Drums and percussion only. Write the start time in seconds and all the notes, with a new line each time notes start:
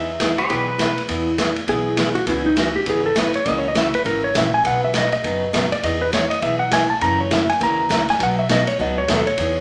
0.20 kick, snare, hi-hat pedal, ride
0.38 ride
0.49 kick, ride
0.79 kick, snare, hi-hat pedal, ride
0.98 ride
1.08 kick, ride
1.38 kick, snare, hi-hat pedal, ride
1.56 ride
1.67 kick, ride
1.97 kick, snare, hi-hat pedal, ride
2.15 ride
2.27 kick, ride
2.56 kick, snare, hi-hat pedal, ride
2.86 kick, ride
3.16 kick, snare, hi-hat pedal, ride
3.34 ride
3.46 kick, ride
3.75 kick, snare, hi-hat pedal, ride
3.94 ride
4.05 kick, ride
4.35 kick, snare, hi-hat pedal, ride
4.64 kick, ride
4.94 kick, snare, hi-hat pedal, ride
5.12 ride
5.24 kick, ride
5.53 kick, snare, hi-hat pedal, ride
5.72 ride
5.83 kick, ride
6.13 kick, snare, hi-hat pedal, ride
6.31 ride
6.42 kick, ride
6.71 kick, snare, hi-hat pedal, ride
7.01 kick, ride
7.31 kick, snare, hi-hat pedal, ride
7.49 ride
7.61 kick, ride
7.90 kick, snare, hi-hat pedal, ride
8.09 snare, ride
8.20 kick, ride
8.49 kick, snare, hi-hat pedal, ride
8.67 ride
8.79 kick
9.08 kick, snare, hi-hat pedal, ride
9.27 ride
9.38 kick, ride